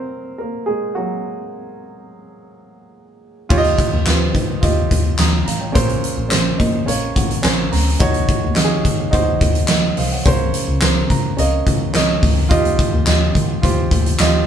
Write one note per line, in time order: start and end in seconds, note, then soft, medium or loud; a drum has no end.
0.00 0.96 F#3 soft
0.00 0.41 A#3 medium
0.00 0.37 C4 medium
0.00 0.95 F#4 soft
0.00 0.38 A#4 medium
0.00 0.36 C5 medium
0.38 0.67 A#3 medium
0.38 0.69 A#4 medium
0.66 0.95 G#3 medium
0.66 0.94 G#4 medium
0.95 3.19 F#3 medium
0.95 1.77 A#3 soft
0.95 0.96 F#4 medium
0.95 1.78 F#4 medium
3.49 3.74 D#2 medium
3.49 4.31 D#3 medium
3.49 3.98 F4 loud
3.49 3.98 G4 medium
3.49 3.58 C#5 medium
3.49 kick loud
3.49 crash medium
3.58 4.02 D#5 loud
3.64 closed hi-hat soft
3.78 kick medium
3.78 closed hi-hat medium
3.93 4.04 D#2 loud
4.05 4.30 D#2 medium
4.05 4.54 F4 medium
4.05 4.54 G4 medium
4.05 4.14 B4 medium
4.05 snare loud
4.05 clap medium
4.05 closed hi-hat medium
4.14 4.58 C5 medium
4.35 4.58 D#3 medium
4.35 kick medium
4.35 closed hi-hat medium
4.61 4.86 D#2 medium
4.61 5.10 F4 medium
4.61 5.10 G4 medium
4.61 5.11 D#5 medium
4.61 kick medium
4.61 closed hi-hat medium
4.91 5.14 D#2 loud
4.91 kick medium
4.91 closed hi-hat medium
5.18 5.42 D#2 loud
5.18 5.45 A#5 soft
5.18 5.46 D#6 medium
5.18 snare loud
5.18 clap medium
5.18 closed hi-hat medium
5.46 5.70 A1 medium
5.46 5.61 F5 medium
5.46 5.60 A#5 medium
5.46 closed hi-hat medium
5.60 5.88 C#5 soft
5.60 5.87 G5 medium
5.72 5.99 A#1 loud
5.72 6.55 A#2 medium
5.72 6.22 C#4 medium
5.72 6.23 A#4 medium
5.72 6.23 C5 loud
5.72 kick loud
5.72 closed hi-hat loud
5.89 closed hi-hat soft
6.04 closed hi-hat medium
6.17 6.29 A#1 loud
6.29 6.55 A#1 medium
6.29 6.78 C#4 medium
6.29 6.79 A#4 medium
6.29 6.79 C5 medium
6.29 snare medium
6.29 clap medium
6.29 closed hi-hat medium
6.58 6.83 A#2 medium
6.58 6.86 D#5 medium
6.58 kick medium
6.58 closed hi-hat medium
6.86 7.11 A#1 medium
6.86 7.35 C#4 medium
6.86 7.36 A#4 medium
6.86 7.36 C#5 medium
6.86 7.14 F5 medium
6.86 closed hi-hat medium
7.16 7.40 A#1 medium
7.16 7.42 F#5 medium
7.16 kick medium
7.16 closed hi-hat medium
7.31 closed hi-hat medium
7.43 7.68 A#1 loud
7.43 7.91 C#4 medium
7.43 7.92 A#4 medium
7.43 7.93 C5 medium
7.43 7.70 G#5 medium
7.43 snare medium
7.43 clap medium
7.43 closed hi-hat medium
7.72 7.96 D2 loud
7.72 7.98 A#5 medium
7.72 snare soft
7.72 open hi-hat medium
7.99 8.24 D#2 medium
7.99 8.81 D#3 medium
7.99 8.48 D#4 medium
7.99 8.48 F#4 medium
7.99 8.49 C#5 loud
7.99 kick loud
7.99 closed hi-hat medium
8.14 closed hi-hat soft
8.28 kick medium
8.28 closed hi-hat medium
8.44 8.55 D#2 medium
8.55 8.80 D#2 medium
8.55 9.04 D#4 medium
8.55 9.04 F#4 medium
8.55 8.64 G4 medium
8.55 snare loud
8.55 clap medium
8.55 closed hi-hat medium
8.64 9.08 G#4 medium
8.85 9.08 D#3 medium
8.85 kick medium
8.85 closed hi-hat medium
9.11 9.36 D#2 medium
9.11 9.60 D#4 medium
9.11 9.60 F#4 medium
9.11 9.61 C5 medium
9.11 kick medium
9.11 closed hi-hat medium
9.41 9.64 D#2 loud
9.41 kick medium
9.41 closed hi-hat medium
9.55 closed hi-hat medium
9.68 9.93 D#2 medium
9.68 9.96 A#4 medium
9.68 9.96 D#5 medium
9.68 snare loud
9.68 clap medium
9.68 closed hi-hat medium
9.97 10.21 C2 medium
9.97 10.11 C5 medium
9.97 10.11 F5 medium
9.97 open hi-hat medium
10.12 10.39 C#5 soft
10.12 10.39 F#5 medium
10.25 10.49 C#2 medium
10.25 11.06 C#3 medium
10.25 10.73 C#4 loud
10.25 10.74 A#4 medium
10.25 10.74 C5 loud
10.25 kick loud
10.25 closed hi-hat loud
10.54 closed hi-hat medium
10.68 10.80 C#2 loud
10.81 11.05 C#2 loud
10.81 11.29 C#4 medium
10.81 11.30 A#4 medium
10.81 11.30 C5 medium
10.81 snare loud
10.81 clap medium
10.81 closed hi-hat medium
11.10 11.33 C#3 medium
11.10 11.36 A#5 medium
11.10 kick medium
11.10 closed hi-hat medium
11.37 11.62 C#2 medium
11.37 11.85 C#4 medium
11.37 11.86 A#4 medium
11.37 11.86 D#5 medium
11.37 11.91 F5 medium
11.37 closed hi-hat medium
11.67 11.90 C#2 medium
11.67 kick medium
11.67 closed hi-hat medium
11.94 12.18 C#2 loud
11.94 12.42 C#4 medium
11.94 12.42 A#4 medium
11.94 12.47 C#5 medium
11.94 12.43 D#5 medium
11.94 snare loud
11.94 clap medium
11.94 closed hi-hat medium
12.23 12.46 D2 medium
12.23 kick medium
12.23 snare soft
12.23 open hi-hat medium
12.49 12.74 D#2 medium
12.49 13.31 D#3 medium
12.49 12.98 F4 loud
12.49 12.98 G4 medium
12.49 12.99 D#5 loud
12.49 kick loud
12.49 closed hi-hat medium
12.65 closed hi-hat soft
12.79 kick medium
12.79 closed hi-hat medium
12.92 13.04 D#2 loud
13.05 13.30 D#2 loud
13.05 13.54 F4 medium
13.05 13.54 G4 medium
13.05 13.55 D#5 medium
13.05 snare loud
13.05 clap medium
13.05 closed hi-hat medium
13.35 13.58 D#3 loud
13.35 kick medium
13.35 closed hi-hat medium
13.62 13.86 D#2 medium
13.62 14.10 F4 medium
13.62 14.11 G4 medium
13.62 14.11 C5 medium
13.62 kick medium
13.62 closed hi-hat medium
13.91 14.14 D#2 medium
13.91 kick medium
13.91 closed hi-hat medium
14.06 closed hi-hat medium
14.18 14.43 D#2 loud
14.18 14.47 F4 medium
14.18 14.47 G4 medium
14.18 14.47 D#5 loud
14.18 snare loud
14.18 clap medium
14.18 closed hi-hat medium